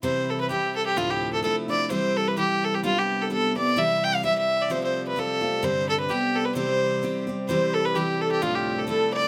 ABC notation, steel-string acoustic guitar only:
X:1
M:2/4
L:1/8
Q:"Swing" 1/4=129
K:C
V:1 name="Steel-string acoustic guitar"
[C,E,G,CE]2 [E,G,CE]2 | [D,,A,,F,A,DE]2 [F,A,DE] [F,A,DE] | [E,G,CG]2 [E,G,CG]2 | [G,B,DG]2 [G,B,DG] [B,DG] |
[C,E,G,CG]2 [E,G,CG]2 | [F,A,CF]2 [F,A,CF] [A,CF] | [G,,D,G,CDG]2 [G,B,DG]2 | [C,E,G,CG]2 [E,G,CG] [G,CG] |
[C,E,G,CG]2 [E,G,CG]2 | [D,,A,,F,A,D]2 [F,A,DE]2 |]